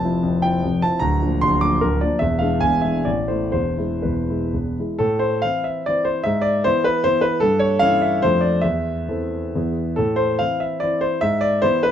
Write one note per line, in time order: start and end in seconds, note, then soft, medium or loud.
0.00 0.23 F1 medium
0.00 0.23 F2 medium
0.00 0.43 A5 loud
0.04 0.22 F3 soft
0.04 0.22 C4 soft
0.04 0.22 E4 medium
0.23 0.43 F1 medium
0.23 0.43 F2 medium
0.42 0.62 F3 soft
0.42 0.62 C4 soft
0.42 0.62 E4 soft
0.42 0.81 G5 medium
0.63 0.81 F1 medium
0.63 0.82 F2 medium
0.82 1.00 F3 soft
0.82 1.00 C4 soft
0.82 1.00 E4 soft
0.82 1.01 A5 medium
0.99 1.20 D1 medium
0.99 1.20 D2 medium
0.99 1.41 A#5 loud
1.22 1.40 F3 soft
1.22 1.41 A#3 soft
1.22 1.40 D4 soft
1.41 1.62 D1 medium
1.41 1.62 D2 medium
1.41 1.62 C6 loud
1.61 1.80 F3 soft
1.61 1.80 A#3 soft
1.61 1.80 D4 soft
1.61 1.81 D6 loud
1.81 2.00 D1 medium
1.81 2.00 D2 medium
1.81 2.00 A#4 medium
2.01 2.18 F3 soft
2.01 2.19 A#3 soft
2.01 2.19 D4 soft
2.01 2.19 D5 medium
2.19 2.39 E1 medium
2.19 2.39 E2 medium
2.19 2.39 E5 loud
2.39 2.59 E3 soft
2.39 2.59 G#3 soft
2.39 2.60 D4 soft
2.39 2.60 F5 medium
2.61 2.83 E1 soft
2.61 2.83 E2 medium
2.61 2.83 G#5 medium
2.81 3.04 E3 soft
2.81 3.04 G#3 soft
2.81 3.04 D4 soft
2.81 3.05 E5 medium
3.05 3.28 A1 soft
3.05 3.28 A2 soft
3.05 3.28 D5 medium
3.28 3.51 E3 soft
3.28 3.51 A3 soft
3.28 3.51 E4 soft
3.28 3.50 C5 medium
3.52 3.76 E1 soft
3.52 3.77 E2 soft
3.52 4.03 C5 medium
3.77 4.01 E3 soft
3.77 4.01 G#3 soft
3.77 4.01 E4 soft
4.02 4.29 E1 soft
4.02 4.29 E2 soft
4.02 4.76 B4 medium
4.29 4.51 E3 soft
4.29 4.51 G#3 soft
4.29 4.51 E4 soft
4.53 4.76 E1 soft
4.53 4.76 E2 soft
4.79 4.97 E3 soft
4.79 4.98 G#3 soft
4.79 4.98 E4 soft
4.99 5.41 A2 medium
4.99 5.20 A4 medium
5.19 5.42 C5 medium
5.42 5.81 E3 soft
5.42 5.82 C4 soft
5.42 5.64 F5 loud
5.46 5.82 E4 soft
5.64 5.85 E5 medium
5.86 6.22 E3 soft
5.86 6.22 C4 soft
5.86 6.22 E4 soft
5.86 6.05 D5 loud
6.05 6.24 C5 medium
6.24 6.64 G#2 medium
6.24 6.43 E5 loud
6.42 6.63 D5 loud
6.64 7.02 E3 medium
6.64 7.02 B3 soft
6.64 7.02 E4 medium
6.64 6.85 C5 loud
6.84 7.05 B4 loud
7.04 7.38 E3 medium
7.04 7.39 B3 medium
7.04 7.39 E4 medium
7.04 7.23 C5 loud
7.21 7.41 B4 medium
7.40 7.80 G2 medium
7.40 7.60 A4 loud
7.59 7.80 C#5 loud
7.79 8.18 E3 medium
7.79 8.19 C#4 medium
7.79 8.19 E4 medium
7.79 8.01 F5 loud
8.02 8.22 E5 medium
8.22 8.62 F2 medium
8.22 8.59 A3 soft
8.22 8.60 D4 soft
8.22 8.61 F4 soft
8.22 8.42 C5 loud
8.41 8.62 D5 medium
8.61 9.06 E2 medium
8.61 9.75 E5 medium
9.08 9.50 E3 soft
9.08 9.50 C4 soft
9.08 9.50 A4 soft
9.55 9.96 E2 medium
9.55 9.93 E3 soft
9.55 9.94 B3 soft
9.55 9.94 G#4 soft
9.96 10.38 A2 medium
9.96 10.17 A4 medium
10.16 10.38 C5 medium
10.39 10.80 E3 soft
10.39 10.79 C4 soft
10.39 10.79 E4 soft
10.39 10.61 F5 loud
10.60 10.82 E5 medium
10.80 11.19 E3 soft
10.80 11.19 C4 soft
10.80 11.20 E4 soft
10.80 11.02 D5 medium
11.01 11.22 C5 medium
11.21 11.62 G#2 medium
11.21 11.42 E5 loud
11.41 11.63 D5 loud
11.62 11.92 E3 medium
11.62 11.92 B3 soft
11.62 11.92 E4 medium
11.62 11.84 C5 loud
11.83 11.92 B4 loud